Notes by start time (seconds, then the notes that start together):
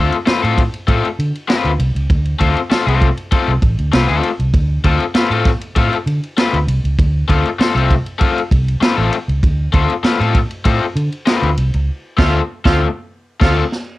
Already playing: A3 C4 F4 A4
0.12 ride
0.26 A3 C4 F4 B4, muted fingered electric bass stroke, snare, ride
0.42 A2 A3 C4 F4 A4, ride
0.58 kick, ride
0.74 ride
0.87 A2 A3 C4 F4 A4, kick, ride
1.05 ride
1.19 D3, ride
1.35 ride
1.48 A3 C4 F4 B4, snare, ride
1.65 D2, ride
1.79 C2, ride
1.95 C#2, ride
2.10 D2, kick, ride
2.25 ride
2.39 D2 A3 C4 F4 A4, kick, ride
2.56 ride
2.70 A3 C4 F4 A4, muted fingered electric bass stroke, snare, ride
2.87 C2 A3 C4 F4 A4, ride
3.01 kick, ride
3.17 ride
3.31 A3 C4 F4 A4, kick, ride
3.48 C2
3.62 A1, kick, ride
3.79 D2, ride
3.92 C2 A3 C4 F4 B4, snare, ride
4.08 D2 A3 C4 F4 A4, ride
4.23 ride
4.39 C2, ride
4.54 D2, kick, ride
4.84 D2 A3 C4 F4 A4, kick, ride
5.00 ride
5.14 A3 C4 F4 B4, muted fingered electric bass stroke, snare, ride
5.30 A2 A3 C4 F4 A4, ride
5.45 kick, snare, ride
5.61 ride
5.76 A2 A3 C4 F4 A4, kick, ride
5.93 ride
6.06 D3, ride
6.23 ride
6.37 A3 C4 F4 B4, snare, ride
6.53 D2, ride
6.67 C2, ride
6.84 C#2, ride
6.99 D2, kick, ride
7.28 D2 A3 C4 F4 A4, kick, ride
7.45 ride
7.59 A3 C4 F4 A4, muted fingered electric bass stroke, snare, ride
7.74 C2 A3 C4 F4 A4, ride
7.90 kick, ride
8.06 ride
8.18 A3 C4 F4 A4, kick, ride
8.38 ride
8.51 C2, kick, ride
8.68 ride
8.81 A3 C4 F4 B4, muted fingered electric bass stroke, snare, ride
8.97 A1 A3 C4 F4 A4
9.13 ride
9.28 C#2, ride
9.43 D2, kick, ride
9.73 D2 A3 C4 F4 A4, kick, ride
9.90 ride
10.03 A3 C4 F4 B4, muted fingered electric bass stroke, snare, ride
10.20 A2 A3 C4 F4 A4, ride
10.35 kick, ride
10.51 ride
10.65 A2 A3 C4 F4 A4, kick, ride
10.96 D3, ride
11.12 ride
11.26 A3 C4 F4 B4, snare, ride
11.42 D2, ride
11.57 C2, ride
11.74 C#2, ride
12.17 D2 A3 C4 F4 A4, kick, snare, crash
12.65 D2 A3 C4 F4 A4, kick, snare
13.40 D2 A3 C4 F4 A4, kick, snare, crash
13.72 snare